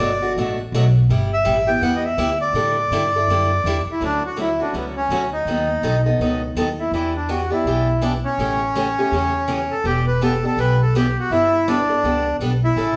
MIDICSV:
0, 0, Header, 1, 5, 480
1, 0, Start_track
1, 0, Key_signature, 2, "major"
1, 0, Tempo, 364964
1, 1424, Time_signature, 4, 2, 24, 8
1, 17049, End_track
2, 0, Start_track
2, 0, Title_t, "Accordion"
2, 0, Program_c, 0, 21
2, 0, Note_on_c, 0, 74, 93
2, 433, Note_off_c, 0, 74, 0
2, 1751, Note_on_c, 0, 76, 92
2, 2206, Note_on_c, 0, 79, 93
2, 2227, Note_off_c, 0, 76, 0
2, 2394, Note_off_c, 0, 79, 0
2, 2400, Note_on_c, 0, 78, 114
2, 2576, Note_off_c, 0, 78, 0
2, 2577, Note_on_c, 0, 75, 61
2, 2683, Note_off_c, 0, 75, 0
2, 2702, Note_on_c, 0, 76, 84
2, 3136, Note_off_c, 0, 76, 0
2, 3170, Note_on_c, 0, 74, 89
2, 5029, Note_off_c, 0, 74, 0
2, 5152, Note_on_c, 0, 64, 95
2, 5305, Note_off_c, 0, 64, 0
2, 5324, Note_on_c, 0, 62, 108
2, 5567, Note_off_c, 0, 62, 0
2, 5609, Note_on_c, 0, 66, 89
2, 5758, Note_off_c, 0, 66, 0
2, 5795, Note_on_c, 0, 64, 96
2, 6068, Note_off_c, 0, 64, 0
2, 6073, Note_on_c, 0, 62, 89
2, 6246, Note_off_c, 0, 62, 0
2, 6264, Note_on_c, 0, 59, 79
2, 6386, Note_off_c, 0, 59, 0
2, 6530, Note_on_c, 0, 61, 92
2, 6969, Note_off_c, 0, 61, 0
2, 7009, Note_on_c, 0, 63, 80
2, 7909, Note_off_c, 0, 63, 0
2, 8942, Note_on_c, 0, 64, 82
2, 9100, Note_off_c, 0, 64, 0
2, 9120, Note_on_c, 0, 64, 101
2, 9383, Note_off_c, 0, 64, 0
2, 9428, Note_on_c, 0, 62, 80
2, 9604, Note_off_c, 0, 62, 0
2, 9605, Note_on_c, 0, 66, 88
2, 9866, Note_off_c, 0, 66, 0
2, 9904, Note_on_c, 0, 64, 83
2, 10568, Note_on_c, 0, 62, 72
2, 10576, Note_off_c, 0, 64, 0
2, 10693, Note_off_c, 0, 62, 0
2, 10846, Note_on_c, 0, 61, 100
2, 12774, Note_on_c, 0, 69, 88
2, 12817, Note_off_c, 0, 61, 0
2, 12957, Note_off_c, 0, 69, 0
2, 12962, Note_on_c, 0, 67, 102
2, 13224, Note_off_c, 0, 67, 0
2, 13248, Note_on_c, 0, 71, 92
2, 13434, Note_off_c, 0, 71, 0
2, 13456, Note_on_c, 0, 69, 90
2, 13739, Note_off_c, 0, 69, 0
2, 13760, Note_on_c, 0, 69, 88
2, 13930, Note_off_c, 0, 69, 0
2, 13938, Note_on_c, 0, 71, 100
2, 14220, Note_off_c, 0, 71, 0
2, 14235, Note_on_c, 0, 69, 82
2, 14390, Note_off_c, 0, 69, 0
2, 14409, Note_on_c, 0, 67, 85
2, 14696, Note_off_c, 0, 67, 0
2, 14726, Note_on_c, 0, 66, 86
2, 14877, Note_off_c, 0, 66, 0
2, 14885, Note_on_c, 0, 64, 108
2, 15365, Note_on_c, 0, 62, 99
2, 15368, Note_off_c, 0, 64, 0
2, 16263, Note_off_c, 0, 62, 0
2, 16627, Note_on_c, 0, 64, 94
2, 17049, Note_off_c, 0, 64, 0
2, 17049, End_track
3, 0, Start_track
3, 0, Title_t, "Steel-string acoustic guitar"
3, 0, Program_c, 1, 25
3, 0, Note_on_c, 1, 54, 81
3, 0, Note_on_c, 1, 57, 84
3, 0, Note_on_c, 1, 62, 91
3, 1, Note_on_c, 1, 66, 84
3, 134, Note_off_c, 1, 54, 0
3, 135, Note_off_c, 1, 57, 0
3, 136, Note_off_c, 1, 62, 0
3, 137, Note_off_c, 1, 66, 0
3, 294, Note_on_c, 1, 66, 55
3, 308, Note_on_c, 1, 62, 57
3, 315, Note_on_c, 1, 57, 49
3, 466, Note_off_c, 1, 66, 0
3, 472, Note_off_c, 1, 62, 0
3, 476, Note_off_c, 1, 57, 0
3, 495, Note_on_c, 1, 47, 66
3, 500, Note_on_c, 1, 54, 62
3, 507, Note_on_c, 1, 62, 78
3, 508, Note_on_c, 1, 66, 77
3, 509, Note_on_c, 1, 57, 63
3, 753, Note_off_c, 1, 47, 0
3, 755, Note_off_c, 1, 54, 0
3, 758, Note_off_c, 1, 62, 0
3, 759, Note_off_c, 1, 66, 0
3, 760, Note_off_c, 1, 57, 0
3, 979, Note_on_c, 1, 47, 88
3, 979, Note_on_c, 1, 54, 90
3, 983, Note_on_c, 1, 57, 98
3, 983, Note_on_c, 1, 62, 92
3, 992, Note_on_c, 1, 66, 100
3, 1106, Note_off_c, 1, 47, 0
3, 1106, Note_off_c, 1, 54, 0
3, 1108, Note_off_c, 1, 57, 0
3, 1108, Note_off_c, 1, 62, 0
3, 1113, Note_off_c, 1, 66, 0
3, 1450, Note_on_c, 1, 55, 75
3, 1451, Note_on_c, 1, 59, 63
3, 1459, Note_on_c, 1, 64, 70
3, 1459, Note_on_c, 1, 67, 71
3, 1710, Note_off_c, 1, 55, 0
3, 1711, Note_off_c, 1, 59, 0
3, 1714, Note_off_c, 1, 67, 0
3, 1715, Note_off_c, 1, 64, 0
3, 1903, Note_on_c, 1, 55, 87
3, 1909, Note_on_c, 1, 64, 78
3, 1910, Note_on_c, 1, 59, 89
3, 1915, Note_on_c, 1, 67, 93
3, 2048, Note_off_c, 1, 55, 0
3, 2051, Note_off_c, 1, 59, 0
3, 2051, Note_off_c, 1, 64, 0
3, 2054, Note_off_c, 1, 67, 0
3, 2198, Note_on_c, 1, 67, 55
3, 2209, Note_on_c, 1, 64, 51
3, 2220, Note_on_c, 1, 59, 46
3, 2377, Note_off_c, 1, 67, 0
3, 2383, Note_off_c, 1, 64, 0
3, 2388, Note_off_c, 1, 59, 0
3, 2391, Note_on_c, 1, 55, 66
3, 2400, Note_on_c, 1, 64, 67
3, 2403, Note_on_c, 1, 59, 73
3, 2404, Note_on_c, 1, 67, 71
3, 2660, Note_off_c, 1, 55, 0
3, 2665, Note_off_c, 1, 64, 0
3, 2666, Note_off_c, 1, 59, 0
3, 2667, Note_off_c, 1, 67, 0
3, 2869, Note_on_c, 1, 55, 80
3, 2871, Note_on_c, 1, 59, 88
3, 2876, Note_on_c, 1, 64, 94
3, 2879, Note_on_c, 1, 67, 101
3, 3010, Note_off_c, 1, 55, 0
3, 3012, Note_off_c, 1, 59, 0
3, 3014, Note_off_c, 1, 64, 0
3, 3016, Note_off_c, 1, 67, 0
3, 3352, Note_on_c, 1, 55, 68
3, 3354, Note_on_c, 1, 50, 63
3, 3354, Note_on_c, 1, 62, 69
3, 3361, Note_on_c, 1, 64, 69
3, 3366, Note_on_c, 1, 69, 77
3, 3620, Note_off_c, 1, 55, 0
3, 3621, Note_off_c, 1, 50, 0
3, 3621, Note_off_c, 1, 62, 0
3, 3625, Note_off_c, 1, 64, 0
3, 3627, Note_off_c, 1, 69, 0
3, 3840, Note_on_c, 1, 50, 84
3, 3849, Note_on_c, 1, 62, 84
3, 3849, Note_on_c, 1, 64, 81
3, 3853, Note_on_c, 1, 55, 72
3, 3864, Note_on_c, 1, 69, 84
3, 3976, Note_off_c, 1, 50, 0
3, 3980, Note_off_c, 1, 62, 0
3, 3980, Note_off_c, 1, 64, 0
3, 3982, Note_off_c, 1, 55, 0
3, 3988, Note_off_c, 1, 69, 0
3, 4154, Note_on_c, 1, 69, 54
3, 4170, Note_on_c, 1, 64, 56
3, 4179, Note_on_c, 1, 62, 44
3, 4315, Note_off_c, 1, 69, 0
3, 4323, Note_off_c, 1, 64, 0
3, 4327, Note_off_c, 1, 62, 0
3, 4340, Note_on_c, 1, 50, 63
3, 4343, Note_on_c, 1, 55, 60
3, 4346, Note_on_c, 1, 64, 69
3, 4352, Note_on_c, 1, 62, 67
3, 4354, Note_on_c, 1, 69, 69
3, 4594, Note_off_c, 1, 50, 0
3, 4596, Note_off_c, 1, 55, 0
3, 4597, Note_off_c, 1, 64, 0
3, 4600, Note_off_c, 1, 62, 0
3, 4601, Note_off_c, 1, 69, 0
3, 4815, Note_on_c, 1, 50, 87
3, 4825, Note_on_c, 1, 64, 90
3, 4826, Note_on_c, 1, 55, 85
3, 4828, Note_on_c, 1, 62, 91
3, 4828, Note_on_c, 1, 69, 82
3, 4943, Note_off_c, 1, 50, 0
3, 4948, Note_off_c, 1, 55, 0
3, 4948, Note_off_c, 1, 64, 0
3, 4950, Note_off_c, 1, 62, 0
3, 4950, Note_off_c, 1, 69, 0
3, 5268, Note_on_c, 1, 50, 56
3, 5273, Note_on_c, 1, 54, 54
3, 5285, Note_on_c, 1, 57, 59
3, 5285, Note_on_c, 1, 61, 58
3, 5290, Note_on_c, 1, 66, 66
3, 5538, Note_off_c, 1, 50, 0
3, 5540, Note_off_c, 1, 54, 0
3, 5546, Note_off_c, 1, 57, 0
3, 5546, Note_off_c, 1, 61, 0
3, 5549, Note_off_c, 1, 66, 0
3, 5739, Note_on_c, 1, 50, 76
3, 5750, Note_on_c, 1, 57, 80
3, 5752, Note_on_c, 1, 54, 76
3, 5759, Note_on_c, 1, 61, 70
3, 5764, Note_on_c, 1, 66, 80
3, 5885, Note_off_c, 1, 50, 0
3, 5891, Note_off_c, 1, 57, 0
3, 5892, Note_off_c, 1, 54, 0
3, 5895, Note_off_c, 1, 61, 0
3, 5897, Note_off_c, 1, 66, 0
3, 6049, Note_on_c, 1, 66, 47
3, 6065, Note_on_c, 1, 61, 39
3, 6077, Note_on_c, 1, 57, 35
3, 6222, Note_off_c, 1, 66, 0
3, 6224, Note_off_c, 1, 57, 0
3, 6230, Note_off_c, 1, 61, 0
3, 6234, Note_on_c, 1, 50, 60
3, 6238, Note_on_c, 1, 54, 57
3, 6240, Note_on_c, 1, 57, 60
3, 6244, Note_on_c, 1, 61, 59
3, 6247, Note_on_c, 1, 66, 54
3, 6501, Note_off_c, 1, 50, 0
3, 6503, Note_off_c, 1, 54, 0
3, 6504, Note_off_c, 1, 57, 0
3, 6506, Note_off_c, 1, 61, 0
3, 6508, Note_off_c, 1, 66, 0
3, 6713, Note_on_c, 1, 50, 77
3, 6725, Note_on_c, 1, 54, 82
3, 6726, Note_on_c, 1, 66, 85
3, 6727, Note_on_c, 1, 57, 77
3, 6729, Note_on_c, 1, 61, 87
3, 6852, Note_off_c, 1, 50, 0
3, 6858, Note_off_c, 1, 54, 0
3, 6859, Note_off_c, 1, 57, 0
3, 6859, Note_off_c, 1, 66, 0
3, 6860, Note_off_c, 1, 61, 0
3, 7194, Note_on_c, 1, 51, 56
3, 7204, Note_on_c, 1, 54, 63
3, 7208, Note_on_c, 1, 59, 61
3, 7211, Note_on_c, 1, 69, 57
3, 7212, Note_on_c, 1, 63, 63
3, 7461, Note_off_c, 1, 51, 0
3, 7466, Note_off_c, 1, 54, 0
3, 7468, Note_off_c, 1, 59, 0
3, 7470, Note_off_c, 1, 63, 0
3, 7470, Note_off_c, 1, 69, 0
3, 7668, Note_on_c, 1, 51, 76
3, 7672, Note_on_c, 1, 59, 80
3, 7676, Note_on_c, 1, 54, 74
3, 7685, Note_on_c, 1, 69, 79
3, 7688, Note_on_c, 1, 63, 89
3, 7810, Note_off_c, 1, 51, 0
3, 7812, Note_off_c, 1, 59, 0
3, 7813, Note_off_c, 1, 54, 0
3, 7818, Note_off_c, 1, 69, 0
3, 7820, Note_off_c, 1, 63, 0
3, 7966, Note_on_c, 1, 69, 55
3, 7971, Note_on_c, 1, 63, 49
3, 7984, Note_on_c, 1, 59, 43
3, 8141, Note_off_c, 1, 69, 0
3, 8143, Note_off_c, 1, 63, 0
3, 8149, Note_off_c, 1, 59, 0
3, 8164, Note_on_c, 1, 51, 58
3, 8167, Note_on_c, 1, 54, 56
3, 8171, Note_on_c, 1, 59, 62
3, 8172, Note_on_c, 1, 69, 61
3, 8181, Note_on_c, 1, 63, 68
3, 8426, Note_off_c, 1, 51, 0
3, 8428, Note_off_c, 1, 54, 0
3, 8430, Note_off_c, 1, 59, 0
3, 8430, Note_off_c, 1, 69, 0
3, 8435, Note_off_c, 1, 63, 0
3, 8635, Note_on_c, 1, 54, 82
3, 8637, Note_on_c, 1, 51, 80
3, 8640, Note_on_c, 1, 59, 82
3, 8645, Note_on_c, 1, 63, 82
3, 8652, Note_on_c, 1, 69, 84
3, 8773, Note_off_c, 1, 54, 0
3, 8774, Note_off_c, 1, 51, 0
3, 8776, Note_off_c, 1, 59, 0
3, 8778, Note_off_c, 1, 63, 0
3, 8782, Note_off_c, 1, 69, 0
3, 9120, Note_on_c, 1, 52, 60
3, 9122, Note_on_c, 1, 59, 63
3, 9125, Note_on_c, 1, 62, 66
3, 9137, Note_on_c, 1, 67, 64
3, 9384, Note_off_c, 1, 52, 0
3, 9385, Note_off_c, 1, 59, 0
3, 9387, Note_off_c, 1, 62, 0
3, 9392, Note_off_c, 1, 67, 0
3, 9585, Note_on_c, 1, 52, 77
3, 9588, Note_on_c, 1, 59, 73
3, 9591, Note_on_c, 1, 62, 81
3, 9593, Note_on_c, 1, 67, 88
3, 9728, Note_off_c, 1, 52, 0
3, 9730, Note_off_c, 1, 59, 0
3, 9731, Note_off_c, 1, 62, 0
3, 9732, Note_off_c, 1, 67, 0
3, 9868, Note_on_c, 1, 67, 54
3, 9884, Note_on_c, 1, 62, 49
3, 9890, Note_on_c, 1, 59, 40
3, 10051, Note_off_c, 1, 67, 0
3, 10060, Note_off_c, 1, 62, 0
3, 10062, Note_off_c, 1, 59, 0
3, 10086, Note_on_c, 1, 59, 64
3, 10087, Note_on_c, 1, 52, 64
3, 10090, Note_on_c, 1, 62, 63
3, 10098, Note_on_c, 1, 67, 69
3, 10347, Note_off_c, 1, 52, 0
3, 10347, Note_off_c, 1, 59, 0
3, 10349, Note_off_c, 1, 62, 0
3, 10353, Note_off_c, 1, 67, 0
3, 10541, Note_on_c, 1, 52, 81
3, 10548, Note_on_c, 1, 59, 82
3, 10553, Note_on_c, 1, 62, 97
3, 10562, Note_on_c, 1, 67, 80
3, 10686, Note_off_c, 1, 52, 0
3, 10689, Note_off_c, 1, 59, 0
3, 10692, Note_off_c, 1, 62, 0
3, 10696, Note_off_c, 1, 67, 0
3, 11035, Note_on_c, 1, 49, 53
3, 11043, Note_on_c, 1, 61, 63
3, 11044, Note_on_c, 1, 52, 60
3, 11046, Note_on_c, 1, 57, 60
3, 11047, Note_on_c, 1, 67, 67
3, 11301, Note_off_c, 1, 49, 0
3, 11305, Note_off_c, 1, 61, 0
3, 11306, Note_off_c, 1, 52, 0
3, 11307, Note_off_c, 1, 57, 0
3, 11307, Note_off_c, 1, 67, 0
3, 11512, Note_on_c, 1, 49, 76
3, 11514, Note_on_c, 1, 52, 78
3, 11518, Note_on_c, 1, 61, 76
3, 11524, Note_on_c, 1, 57, 81
3, 11531, Note_on_c, 1, 67, 89
3, 11651, Note_off_c, 1, 49, 0
3, 11652, Note_off_c, 1, 52, 0
3, 11654, Note_off_c, 1, 61, 0
3, 11657, Note_off_c, 1, 57, 0
3, 11661, Note_off_c, 1, 67, 0
3, 11821, Note_on_c, 1, 67, 49
3, 11832, Note_on_c, 1, 61, 46
3, 11839, Note_on_c, 1, 57, 43
3, 11988, Note_off_c, 1, 67, 0
3, 11993, Note_off_c, 1, 61, 0
3, 11994, Note_off_c, 1, 57, 0
3, 12005, Note_on_c, 1, 49, 59
3, 12007, Note_on_c, 1, 52, 61
3, 12009, Note_on_c, 1, 57, 62
3, 12017, Note_on_c, 1, 67, 63
3, 12018, Note_on_c, 1, 61, 69
3, 12266, Note_off_c, 1, 49, 0
3, 12267, Note_off_c, 1, 52, 0
3, 12268, Note_off_c, 1, 57, 0
3, 12272, Note_off_c, 1, 67, 0
3, 12273, Note_off_c, 1, 61, 0
3, 12464, Note_on_c, 1, 49, 77
3, 12465, Note_on_c, 1, 52, 69
3, 12466, Note_on_c, 1, 57, 70
3, 12474, Note_on_c, 1, 61, 83
3, 12475, Note_on_c, 1, 67, 74
3, 12607, Note_off_c, 1, 49, 0
3, 12608, Note_off_c, 1, 52, 0
3, 12608, Note_off_c, 1, 57, 0
3, 12612, Note_off_c, 1, 61, 0
3, 12613, Note_off_c, 1, 67, 0
3, 12953, Note_on_c, 1, 59, 55
3, 12956, Note_on_c, 1, 52, 56
3, 12958, Note_on_c, 1, 67, 67
3, 12959, Note_on_c, 1, 62, 63
3, 13220, Note_off_c, 1, 59, 0
3, 13222, Note_off_c, 1, 52, 0
3, 13223, Note_off_c, 1, 62, 0
3, 13223, Note_off_c, 1, 67, 0
3, 13433, Note_on_c, 1, 52, 71
3, 13441, Note_on_c, 1, 59, 84
3, 13448, Note_on_c, 1, 62, 90
3, 13453, Note_on_c, 1, 67, 80
3, 13572, Note_off_c, 1, 52, 0
3, 13576, Note_off_c, 1, 59, 0
3, 13579, Note_off_c, 1, 62, 0
3, 13582, Note_off_c, 1, 67, 0
3, 13718, Note_on_c, 1, 67, 48
3, 13740, Note_on_c, 1, 62, 43
3, 13743, Note_on_c, 1, 59, 42
3, 13896, Note_off_c, 1, 67, 0
3, 13907, Note_off_c, 1, 62, 0
3, 13909, Note_off_c, 1, 59, 0
3, 13916, Note_on_c, 1, 52, 65
3, 13922, Note_on_c, 1, 59, 66
3, 13923, Note_on_c, 1, 62, 59
3, 13931, Note_on_c, 1, 67, 64
3, 14182, Note_off_c, 1, 52, 0
3, 14185, Note_off_c, 1, 59, 0
3, 14185, Note_off_c, 1, 62, 0
3, 14189, Note_off_c, 1, 67, 0
3, 14403, Note_on_c, 1, 52, 86
3, 14412, Note_on_c, 1, 59, 90
3, 14415, Note_on_c, 1, 62, 86
3, 14417, Note_on_c, 1, 67, 77
3, 14537, Note_off_c, 1, 52, 0
3, 14542, Note_off_c, 1, 59, 0
3, 14543, Note_off_c, 1, 62, 0
3, 14544, Note_off_c, 1, 67, 0
3, 14878, Note_on_c, 1, 55, 55
3, 14889, Note_on_c, 1, 62, 61
3, 14890, Note_on_c, 1, 59, 62
3, 14895, Note_on_c, 1, 69, 56
3, 15143, Note_off_c, 1, 55, 0
3, 15149, Note_off_c, 1, 59, 0
3, 15149, Note_off_c, 1, 62, 0
3, 15152, Note_off_c, 1, 69, 0
3, 15360, Note_on_c, 1, 55, 75
3, 15360, Note_on_c, 1, 59, 86
3, 15361, Note_on_c, 1, 62, 76
3, 15370, Note_on_c, 1, 69, 80
3, 15496, Note_off_c, 1, 55, 0
3, 15496, Note_off_c, 1, 59, 0
3, 15496, Note_off_c, 1, 62, 0
3, 15501, Note_off_c, 1, 69, 0
3, 15643, Note_on_c, 1, 69, 48
3, 15660, Note_on_c, 1, 62, 43
3, 15669, Note_on_c, 1, 59, 38
3, 15819, Note_off_c, 1, 69, 0
3, 15826, Note_off_c, 1, 59, 0
3, 15828, Note_off_c, 1, 62, 0
3, 15839, Note_on_c, 1, 55, 62
3, 15842, Note_on_c, 1, 59, 55
3, 15849, Note_on_c, 1, 69, 70
3, 15856, Note_on_c, 1, 62, 59
3, 16104, Note_off_c, 1, 55, 0
3, 16106, Note_off_c, 1, 59, 0
3, 16110, Note_off_c, 1, 69, 0
3, 16113, Note_off_c, 1, 62, 0
3, 16316, Note_on_c, 1, 55, 77
3, 16325, Note_on_c, 1, 62, 94
3, 16328, Note_on_c, 1, 59, 87
3, 16342, Note_on_c, 1, 69, 73
3, 16455, Note_off_c, 1, 55, 0
3, 16459, Note_off_c, 1, 62, 0
3, 16460, Note_off_c, 1, 59, 0
3, 16468, Note_off_c, 1, 69, 0
3, 16786, Note_on_c, 1, 49, 55
3, 16794, Note_on_c, 1, 52, 66
3, 16794, Note_on_c, 1, 57, 59
3, 16802, Note_on_c, 1, 61, 66
3, 16808, Note_on_c, 1, 69, 73
3, 17049, Note_off_c, 1, 49, 0
3, 17049, Note_off_c, 1, 52, 0
3, 17049, Note_off_c, 1, 57, 0
3, 17049, Note_off_c, 1, 61, 0
3, 17049, Note_off_c, 1, 69, 0
3, 17049, End_track
4, 0, Start_track
4, 0, Title_t, "Upright bass"
4, 0, Program_c, 2, 32
4, 0, Note_on_c, 2, 31, 80
4, 447, Note_off_c, 2, 31, 0
4, 478, Note_on_c, 2, 33, 78
4, 937, Note_off_c, 2, 33, 0
4, 949, Note_on_c, 2, 35, 87
4, 1412, Note_off_c, 2, 35, 0
4, 1439, Note_on_c, 2, 31, 86
4, 1897, Note_off_c, 2, 31, 0
4, 1907, Note_on_c, 2, 33, 87
4, 2371, Note_off_c, 2, 33, 0
4, 2379, Note_on_c, 2, 40, 85
4, 2846, Note_off_c, 2, 40, 0
4, 2860, Note_on_c, 2, 38, 89
4, 3323, Note_off_c, 2, 38, 0
4, 3331, Note_on_c, 2, 45, 85
4, 3802, Note_off_c, 2, 45, 0
4, 3824, Note_on_c, 2, 43, 74
4, 4288, Note_off_c, 2, 43, 0
4, 4308, Note_on_c, 2, 42, 75
4, 4771, Note_off_c, 2, 42, 0
4, 4786, Note_on_c, 2, 40, 91
4, 5055, Note_off_c, 2, 40, 0
4, 5268, Note_on_c, 2, 38, 74
4, 6033, Note_off_c, 2, 38, 0
4, 6222, Note_on_c, 2, 37, 63
4, 6630, Note_off_c, 2, 37, 0
4, 6694, Note_on_c, 2, 38, 76
4, 7105, Note_off_c, 2, 38, 0
4, 7170, Note_on_c, 2, 39, 78
4, 7559, Note_off_c, 2, 39, 0
4, 7655, Note_on_c, 2, 35, 67
4, 8066, Note_off_c, 2, 35, 0
4, 8139, Note_on_c, 2, 37, 79
4, 8548, Note_off_c, 2, 37, 0
4, 8618, Note_on_c, 2, 39, 76
4, 9028, Note_off_c, 2, 39, 0
4, 9091, Note_on_c, 2, 40, 83
4, 9863, Note_off_c, 2, 40, 0
4, 10051, Note_on_c, 2, 35, 71
4, 10823, Note_off_c, 2, 35, 0
4, 11014, Note_on_c, 2, 33, 82
4, 11785, Note_off_c, 2, 33, 0
4, 11988, Note_on_c, 2, 40, 72
4, 12753, Note_off_c, 2, 40, 0
4, 12941, Note_on_c, 2, 28, 86
4, 13709, Note_off_c, 2, 28, 0
4, 13892, Note_on_c, 2, 35, 77
4, 14664, Note_off_c, 2, 35, 0
4, 14866, Note_on_c, 2, 31, 78
4, 15633, Note_off_c, 2, 31, 0
4, 15826, Note_on_c, 2, 37, 66
4, 16233, Note_off_c, 2, 37, 0
4, 16304, Note_on_c, 2, 35, 70
4, 16713, Note_off_c, 2, 35, 0
4, 16778, Note_on_c, 2, 33, 75
4, 17049, Note_off_c, 2, 33, 0
4, 17049, End_track
5, 0, Start_track
5, 0, Title_t, "Muted upright bass strokes"
5, 5071, Note_on_c, 9, 29, 39
5, 5203, Note_off_c, 9, 29, 0
5, 17049, End_track
0, 0, End_of_file